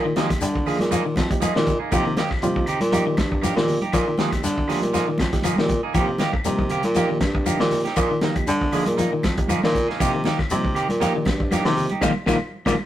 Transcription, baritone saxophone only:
0, 0, Header, 1, 2, 480
1, 0, Start_track
1, 0, Key_signature, -3, "minor"
1, 0, Tempo, 504626
1, 1826, Time_signature, 4, 2, 24, 8
1, 12230, End_track
2, 0, Start_track
2, 0, Title_t, "Baritone saxophone"
2, 0, Program_c, 0, 67
2, 0, Note_on_c, 0, 46, 90
2, 132, Note_off_c, 0, 46, 0
2, 387, Note_on_c, 0, 50, 79
2, 723, Note_off_c, 0, 50, 0
2, 757, Note_on_c, 0, 46, 74
2, 1074, Note_off_c, 0, 46, 0
2, 1112, Note_on_c, 0, 41, 80
2, 1228, Note_off_c, 0, 41, 0
2, 1338, Note_on_c, 0, 46, 33
2, 1406, Note_off_c, 0, 46, 0
2, 1474, Note_on_c, 0, 46, 96
2, 1692, Note_off_c, 0, 46, 0
2, 1718, Note_on_c, 0, 46, 34
2, 1773, Note_off_c, 0, 46, 0
2, 1822, Note_on_c, 0, 48, 92
2, 2041, Note_off_c, 0, 48, 0
2, 2296, Note_on_c, 0, 48, 75
2, 2635, Note_off_c, 0, 48, 0
2, 2666, Note_on_c, 0, 46, 92
2, 2986, Note_off_c, 0, 46, 0
2, 3022, Note_on_c, 0, 43, 78
2, 3358, Note_off_c, 0, 43, 0
2, 3382, Note_on_c, 0, 46, 101
2, 3605, Note_off_c, 0, 46, 0
2, 3740, Note_on_c, 0, 46, 94
2, 3959, Note_off_c, 0, 46, 0
2, 4214, Note_on_c, 0, 50, 79
2, 4553, Note_off_c, 0, 50, 0
2, 4588, Note_on_c, 0, 46, 80
2, 4907, Note_off_c, 0, 46, 0
2, 4941, Note_on_c, 0, 41, 79
2, 5060, Note_off_c, 0, 41, 0
2, 5184, Note_on_c, 0, 46, 33
2, 5249, Note_off_c, 0, 46, 0
2, 5307, Note_on_c, 0, 46, 91
2, 5527, Note_off_c, 0, 46, 0
2, 5549, Note_on_c, 0, 46, 32
2, 5605, Note_off_c, 0, 46, 0
2, 5652, Note_on_c, 0, 48, 83
2, 5874, Note_off_c, 0, 48, 0
2, 6139, Note_on_c, 0, 48, 77
2, 6477, Note_off_c, 0, 48, 0
2, 6508, Note_on_c, 0, 46, 88
2, 6827, Note_off_c, 0, 46, 0
2, 6854, Note_on_c, 0, 43, 84
2, 7194, Note_off_c, 0, 43, 0
2, 7228, Note_on_c, 0, 46, 91
2, 7448, Note_off_c, 0, 46, 0
2, 7573, Note_on_c, 0, 46, 94
2, 7796, Note_off_c, 0, 46, 0
2, 8061, Note_on_c, 0, 50, 93
2, 8399, Note_off_c, 0, 50, 0
2, 8433, Note_on_c, 0, 46, 79
2, 8752, Note_off_c, 0, 46, 0
2, 8793, Note_on_c, 0, 41, 76
2, 8908, Note_off_c, 0, 41, 0
2, 9034, Note_on_c, 0, 46, 35
2, 9098, Note_off_c, 0, 46, 0
2, 9163, Note_on_c, 0, 46, 101
2, 9379, Note_off_c, 0, 46, 0
2, 9419, Note_on_c, 0, 46, 32
2, 9468, Note_off_c, 0, 46, 0
2, 9516, Note_on_c, 0, 48, 93
2, 9730, Note_off_c, 0, 48, 0
2, 9993, Note_on_c, 0, 48, 82
2, 10328, Note_off_c, 0, 48, 0
2, 10364, Note_on_c, 0, 46, 81
2, 10680, Note_off_c, 0, 46, 0
2, 10715, Note_on_c, 0, 43, 78
2, 11050, Note_off_c, 0, 43, 0
2, 11080, Note_on_c, 0, 48, 104
2, 11299, Note_off_c, 0, 48, 0
2, 11431, Note_on_c, 0, 46, 89
2, 11529, Note_off_c, 0, 46, 0
2, 11671, Note_on_c, 0, 46, 89
2, 11769, Note_off_c, 0, 46, 0
2, 12042, Note_on_c, 0, 46, 85
2, 12125, Note_off_c, 0, 46, 0
2, 12230, End_track
0, 0, End_of_file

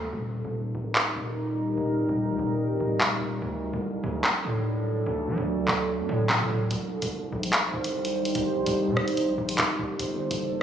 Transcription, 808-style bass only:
0, 0, Header, 1, 2, 480
1, 0, Start_track
1, 0, Tempo, 410959
1, 154, Time_signature, 4, 2, 24, 8
1, 12412, End_track
2, 0, Start_track
2, 0, Title_t, "808-style bass"
2, 0, Program_c, 0, 38
2, 0, Note_on_c, 0, 38, 99
2, 145, Note_off_c, 0, 38, 0
2, 154, Note_on_c, 0, 27, 112
2, 507, Note_off_c, 0, 27, 0
2, 521, Note_on_c, 0, 27, 102
2, 860, Note_off_c, 0, 27, 0
2, 874, Note_on_c, 0, 26, 101
2, 1335, Note_off_c, 0, 26, 0
2, 1354, Note_on_c, 0, 27, 109
2, 2045, Note_off_c, 0, 27, 0
2, 2074, Note_on_c, 0, 27, 106
2, 2314, Note_on_c, 0, 26, 100
2, 2331, Note_off_c, 0, 27, 0
2, 2435, Note_off_c, 0, 26, 0
2, 2441, Note_on_c, 0, 27, 109
2, 2681, Note_on_c, 0, 39, 100
2, 2699, Note_off_c, 0, 27, 0
2, 2789, Note_off_c, 0, 39, 0
2, 2794, Note_on_c, 0, 27, 105
2, 3161, Note_on_c, 0, 26, 94
2, 3179, Note_off_c, 0, 27, 0
2, 3269, Note_off_c, 0, 26, 0
2, 3274, Note_on_c, 0, 26, 108
2, 3504, Note_off_c, 0, 26, 0
2, 3514, Note_on_c, 0, 27, 110
2, 3744, Note_off_c, 0, 27, 0
2, 3754, Note_on_c, 0, 27, 105
2, 3985, Note_off_c, 0, 27, 0
2, 3994, Note_on_c, 0, 38, 112
2, 4347, Note_off_c, 0, 38, 0
2, 4361, Note_on_c, 0, 36, 102
2, 4700, Note_off_c, 0, 36, 0
2, 4714, Note_on_c, 0, 38, 108
2, 4945, Note_off_c, 0, 38, 0
2, 5194, Note_on_c, 0, 45, 108
2, 5885, Note_off_c, 0, 45, 0
2, 5914, Note_on_c, 0, 38, 110
2, 6154, Note_on_c, 0, 54, 103
2, 6171, Note_off_c, 0, 38, 0
2, 6275, Note_off_c, 0, 54, 0
2, 6281, Note_on_c, 0, 38, 104
2, 6620, Note_off_c, 0, 38, 0
2, 6634, Note_on_c, 0, 38, 109
2, 7001, Note_on_c, 0, 42, 101
2, 7018, Note_off_c, 0, 38, 0
2, 7108, Note_off_c, 0, 42, 0
2, 7114, Note_on_c, 0, 45, 108
2, 7344, Note_off_c, 0, 45, 0
2, 7354, Note_on_c, 0, 45, 110
2, 7476, Note_off_c, 0, 45, 0
2, 7481, Note_on_c, 0, 45, 98
2, 7587, Note_off_c, 0, 45, 0
2, 7594, Note_on_c, 0, 45, 104
2, 7824, Note_off_c, 0, 45, 0
2, 7834, Note_on_c, 0, 36, 112
2, 8187, Note_off_c, 0, 36, 0
2, 8201, Note_on_c, 0, 36, 100
2, 8540, Note_off_c, 0, 36, 0
2, 8554, Note_on_c, 0, 34, 103
2, 9015, Note_off_c, 0, 34, 0
2, 9034, Note_on_c, 0, 36, 109
2, 9725, Note_off_c, 0, 36, 0
2, 9754, Note_on_c, 0, 36, 105
2, 9994, Note_on_c, 0, 34, 102
2, 10012, Note_off_c, 0, 36, 0
2, 10115, Note_off_c, 0, 34, 0
2, 10121, Note_on_c, 0, 36, 109
2, 10362, Note_on_c, 0, 48, 102
2, 10379, Note_off_c, 0, 36, 0
2, 10469, Note_off_c, 0, 48, 0
2, 10474, Note_on_c, 0, 36, 102
2, 10841, Note_on_c, 0, 34, 97
2, 10859, Note_off_c, 0, 36, 0
2, 10948, Note_off_c, 0, 34, 0
2, 10954, Note_on_c, 0, 34, 107
2, 11185, Note_off_c, 0, 34, 0
2, 11194, Note_on_c, 0, 36, 112
2, 11425, Note_off_c, 0, 36, 0
2, 11434, Note_on_c, 0, 36, 104
2, 11665, Note_off_c, 0, 36, 0
2, 11674, Note_on_c, 0, 31, 113
2, 12027, Note_off_c, 0, 31, 0
2, 12041, Note_on_c, 0, 30, 105
2, 12380, Note_off_c, 0, 30, 0
2, 12412, End_track
0, 0, End_of_file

